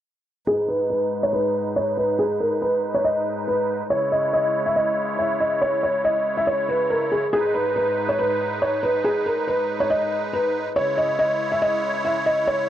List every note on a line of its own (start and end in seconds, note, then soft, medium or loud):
0.47 3.87 G#2 medium
0.47 10.72 G#3 medium
0.47 3.87 D#4 medium
0.47 0.67 G#4 loud
0.47 3.87 B4 medium
0.68 0.88 B4 medium
0.90 1.21 B4 medium
1.23 1.32 C#5 medium
1.33 1.73 B4 medium
1.76 1.95 C#5 medium
1.97 2.17 B4 medium
2.19 2.38 G#4 medium
2.40 2.60 A#4 medium
2.62 2.93 B4 medium
2.94 3.04 C#5 medium
3.04 3.45 D#5 medium
3.48 3.88 B4 medium
3.90 7.30 C#3 medium
3.90 7.30 E4 medium
3.90 4.10 C#5 medium
3.90 7.30 C#5 medium
4.12 4.31 D#5 medium
4.33 4.64 D#5 medium
4.66 4.75 E5 medium
4.76 5.16 D#5 medium
5.19 5.38 E5 medium
5.40 5.60 D#5 medium
5.62 5.81 C#5 medium
5.83 6.02 C#5 medium
6.04 6.35 D#5 medium
6.37 6.46 E5 medium
6.47 6.67 C#5 medium
6.69 6.88 B4 medium
6.90 7.10 A#4 medium
7.12 7.31 G#4 medium
7.33 10.73 G#2 medium
7.33 10.73 D#4 medium
7.33 7.52 G#4 loud
7.33 10.73 B4 medium
7.54 7.74 B4 medium
7.76 8.07 B4 medium
8.09 8.18 C#5 medium
8.19 8.59 B4 medium
8.62 8.81 C#5 medium
8.83 9.02 B4 medium
9.04 9.24 G#4 medium
9.26 9.45 A#4 medium
9.47 9.78 B4 medium
9.80 9.89 C#5 medium
9.90 10.31 D#5 medium
10.33 10.74 B4 medium
10.76 12.69 C#3 medium
10.76 12.69 G#3 medium
10.76 12.69 E4 medium
10.76 12.69 C#5 medium
10.76 10.95 C#5 medium
10.98 11.17 D#5 medium
11.19 11.50 D#5 medium
11.52 11.61 E5 medium
11.62 12.02 D#5 medium
12.05 12.24 E5 medium
12.26 12.45 D#5 medium
12.47 12.67 C#5 medium